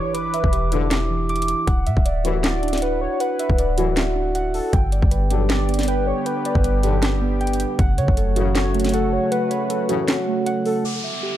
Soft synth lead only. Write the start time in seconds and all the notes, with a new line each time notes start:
Already playing: C#5
0.14 B4
2.44 D5
2.82 B4
3.01 C#5
3.20 B4
4.54 A4
5.50 D5
5.88 B4
6.07 C#5
6.26 B4
8.55 C#5
8.94 A4
9.13 C#5
9.31 B4
10.66 A4